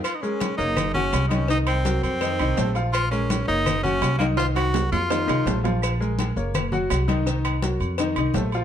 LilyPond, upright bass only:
\new Staff \with { instrumentName = "Upright bass" } { \clef bass \time 4/4 \key bes \minor \tempo 4 = 166 r4. ges,,4. c,4~ | c,4. f,4 c,8 bes,,4~ | bes,,4. ges,,4. c,4~ | c,4. f,4 c,8 bes,,4~ |
bes,,4. ges,,4. c,4~ | c,4. f,4 c,8 bes,,4 | }